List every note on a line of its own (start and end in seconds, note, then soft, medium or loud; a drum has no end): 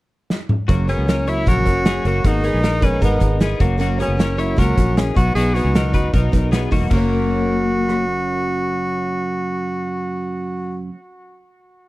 0.30 snare medium
0.49 mid tom medium
0.68 0.94 F#1 medium
0.68 0.88 F#2 medium
0.68 0.88 C#3 medium
0.68 0.89 F#3 medium
0.68 0.89 A#3 medium
0.68 0.88 A#3 medium
0.68 0.86 C#4 medium
0.68 0.88 F#4 medium
0.68 kick loud
0.68 closed hi-hat medium
0.88 1.06 F#3 soft
0.88 1.07 A#3 soft
0.88 1.09 B3 medium
0.88 1.07 C#4 medium
0.88 1.31 C#4 medium
0.88 1.08 G#4 medium
0.88 closed hi-hat medium
0.98 1.44 C#2 medium
1.06 1.26 C#3 soft
1.06 1.27 F#3 soft
1.06 1.26 A#3 medium
1.06 1.25 C#4 medium
1.06 1.28 C#4 soft
1.06 1.27 A#4 medium
1.06 snare loud
1.06 closed hi-hat medium
1.26 1.45 F#3 soft
1.26 1.45 A#3 soft
1.26 1.46 C#4 soft
1.26 1.47 E4 medium
1.26 1.50 E4 loud
1.26 1.47 C#5 medium
1.26 closed hi-hat medium
1.46 1.66 A#1 medium
1.46 1.66 F#2 medium
1.46 1.66 C#3 medium
1.46 1.66 F#3 medium
1.46 1.65 A#3 medium
1.46 1.64 C#4 medium
1.46 1.84 C#4 medium
1.46 2.06 F#4 loud
1.46 1.84 A#4 medium
1.46 kick medium
1.46 closed hi-hat medium
1.65 1.99 F#1 medium
1.65 1.85 F#3 soft
1.65 1.86 A#3 soft
1.65 1.85 C#4 soft
1.65 kick medium
1.65 closed hi-hat medium
1.85 2.05 C#3 medium
1.85 2.05 F#3 medium
1.85 2.04 A#3 medium
1.85 2.06 C#4 soft
1.85 2.04 C#4 medium
1.85 2.05 G#4 medium
1.85 snare loud
1.85 closed hi-hat medium
2.05 2.21 F#1 medium
2.05 2.24 F#3 soft
2.05 2.24 A#3 soft
2.05 2.25 A#3 medium
2.05 2.25 C#4 medium
2.05 2.25 F#4 medium
2.05 2.28 F#4 medium
2.05 closed hi-hat medium
2.24 2.49 G#1 medium
2.24 2.44 G#2 medium
2.24 2.44 D#3 medium
2.24 2.44 G#3 medium
2.24 2.45 A#3 medium
2.24 2.44 B3 medium
2.24 2.44 D#4 medium
2.24 2.86 D#4 loud
2.24 2.45 F#4 medium
2.24 2.43 A#4 medium
2.24 kick loud
2.24 closed hi-hat medium
2.44 2.62 G#3 soft
2.44 2.62 B3 soft
2.44 2.64 B3 soft
2.44 2.63 D#4 medium
2.44 2.63 G#4 medium
2.44 2.63 A#4 soft
2.44 closed hi-hat medium
2.54 3.00 A#1 medium
2.63 2.82 G#3 soft
2.63 2.82 B3 soft
2.63 2.82 D#4 soft
2.63 2.82 A#4 medium
2.63 2.80 A#4 medium
2.63 snare medium
2.63 closed hi-hat medium
2.81 3.01 G#3 soft
2.81 3.00 B3 soft
2.81 3.03 C#4 medium
2.81 3.01 D#4 soft
2.81 3.02 D#4 medium
2.81 3.01 A#4 soft
2.81 3.01 B4 medium
2.81 kick medium
2.81 closed hi-hat medium
3.01 3.19 G#1 medium
3.01 3.21 G#2 medium
3.01 3.21 D#3 medium
3.01 3.20 G#3 medium
3.01 3.20 B3 medium
3.01 3.39 B3 medium
3.01 3.18 D#4 medium
3.01 3.39 D#4 medium
3.01 3.39 A#4 medium
3.01 3.19 A#4 medium
3.01 kick medium
3.01 closed hi-hat medium
3.20 3.54 G#1 medium
3.20 3.38 G#3 soft
3.20 3.39 B3 soft
3.20 3.39 D#4 medium
3.20 3.40 A#4 medium
3.20 kick medium
3.20 closed hi-hat medium
3.39 3.60 G#3 medium
3.39 3.60 B3 medium
3.39 3.61 B3 medium
3.39 3.59 D#4 medium
3.39 3.61 G#4 medium
3.39 3.61 A#4 medium
3.39 snare loud
3.39 closed hi-hat medium
3.60 4.02 F#1 medium
3.60 3.77 F#3 soft
3.60 3.78 A#3 medium
3.60 3.80 A#3 medium
3.60 3.78 C#4 medium
3.60 3.80 F#4 medium
3.60 kick medium
3.60 closed hi-hat medium
3.78 3.98 F#2 medium
3.78 3.99 C#3 medium
3.78 3.99 F#3 medium
3.78 3.98 A#3 medium
3.78 4.00 A#3 medium
3.78 3.97 C#4 medium
3.78 4.00 F#4 medium
3.78 closed hi-hat medium
3.98 4.16 F#3 soft
3.98 4.18 A#3 medium
3.98 4.20 B3 medium
3.98 4.18 C#4 medium
3.98 4.19 G#4 medium
3.98 closed hi-hat medium
4.02 4.41 C#4 medium
4.08 4.55 F#1 medium
4.17 4.37 C#3 soft
4.17 4.38 F#3 medium
4.17 4.37 A#3 medium
4.17 4.36 C#4 medium
4.17 4.39 C#4 medium
4.17 4.38 A#4 medium
4.17 snare loud
4.17 closed hi-hat medium
4.37 4.56 F#3 soft
4.37 4.56 A#3 soft
4.37 4.56 C#4 medium
4.37 4.60 E4 medium
4.37 4.58 E4 medium
4.37 4.58 C#5 medium
4.37 closed hi-hat medium
4.56 4.74 C#2 medium
4.56 4.76 F#2 medium
4.56 4.76 C#3 medium
4.56 4.77 F#3 medium
4.56 4.76 A#3 medium
4.56 4.75 C#4 medium
4.56 4.95 C#4 medium
4.56 4.97 F#4 medium
4.56 4.95 A#4 medium
4.56 kick medium
4.56 closed hi-hat medium
4.76 5.10 A#1 medium
4.76 4.96 F#3 soft
4.76 4.97 A#3 soft
4.76 4.96 C#4 soft
4.76 kick medium
4.76 snare soft
4.76 closed hi-hat medium
4.97 5.16 C#3 medium
4.97 5.16 F#3 medium
4.97 5.15 A#3 medium
4.97 5.17 C#4 medium
4.97 5.14 C#4 medium
4.97 5.16 G#4 medium
4.97 snare loud
4.97 closed hi-hat medium
5.14 5.33 B1 medium
5.14 5.35 F#3 soft
5.14 5.35 B3 soft
5.14 5.36 B3 medium
5.14 5.35 D#4 medium
5.14 5.35 F#4 medium
5.14 kick loud
5.14 closed hi-hat medium
5.35 5.60 B1 medium
5.35 5.55 B2 medium
5.35 5.55 F#3 medium
5.35 5.55 B3 medium
5.35 5.53 D#4 medium
5.35 5.55 F#4 medium
5.35 5.56 G#4 loud
5.35 closed hi-hat medium
5.54 5.74 F#3 soft
5.54 5.75 B3 medium
5.54 5.74 B3 soft
5.54 5.74 D#4 soft
5.54 6.13 F#4 medium
5.54 5.75 G#4 medium
5.54 closed hi-hat medium
5.65 6.11 C#2 medium
5.74 5.94 B2 medium
5.74 5.94 F#3 medium
5.74 5.93 B3 medium
5.74 5.94 D#4 soft
5.74 5.92 D#4 medium
5.74 5.94 A#4 medium
5.74 snare loud
5.74 closed hi-hat medium
5.93 6.12 F#3 soft
5.93 6.13 B3 soft
5.93 6.13 D#4 soft
5.93 6.14 D#4 medium
5.93 6.13 B4 medium
5.93 kick medium
5.93 closed hi-hat medium
6.13 6.30 B1 medium
6.13 6.33 B2 medium
6.13 6.33 F#3 medium
6.13 6.32 B3 medium
6.13 6.31 D#4 loud
6.13 6.51 D#4 medium
6.13 6.50 A#4 medium
6.13 kick medium
6.13 closed hi-hat medium
6.32 6.66 B1 medium
6.32 6.51 F#3 soft
6.32 6.51 B3 medium
6.32 6.52 D#4 medium
6.32 kick medium
6.32 snare soft
6.32 closed hi-hat medium
6.51 6.71 B2 medium
6.51 6.72 F#3 medium
6.51 6.70 B3 medium
6.51 6.72 B3 medium
6.51 6.70 D#4 medium
6.51 6.71 G#4 medium
6.51 snare loud
6.51 closed hi-hat medium
6.71 6.88 E1 medium
6.71 6.92 F#3 soft
6.71 6.89 A#3 medium
6.71 6.91 B3 medium
6.71 6.91 D#4 medium
6.71 6.91 F#4 medium
6.71 kick medium
6.71 open hi-hat medium
6.88 10.89 F#1 medium
6.88 10.89 F#2 medium
6.88 10.93 C#3 medium
6.88 8.04 A#3 medium
6.88 kick loud
6.88 crash medium
6.92 10.95 F#3 medium
6.92 10.96 A#3 medium
6.92 10.80 F#4 medium
6.97 10.99 C#4 medium
7.89 cross-stick medium